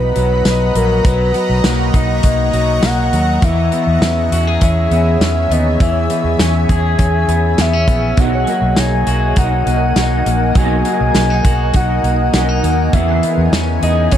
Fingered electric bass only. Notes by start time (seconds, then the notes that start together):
Already playing: B1
0.16 B1
0.46 B1
0.75 A#1
1.50 B1
1.64 B1
1.94 B1
2.24 B1
2.53 B1
2.83 B1
3.13 D#2
3.42 E2
3.87 E2
4.02 E2
4.32 E2
4.62 E2
4.91 E2
5.20 E2
5.50 D#2
5.80 E2
6.24 E2
6.39 E2
6.69 E2
6.99 E2
7.28 E2
7.58 E2
7.88 A#1
8.18 B1
8.62 B1
8.78 B1
9.07 B1
9.37 B1
9.66 B1
9.96 B1
10.26 A#1
10.56 B1
11.01 B1
11.15 B1
11.45 B1
11.75 B1
12.03 B1
12.33 B1
12.64 D#2
12.93 E2
13.38 E2
13.52 E2
13.83 E2
14.12 E2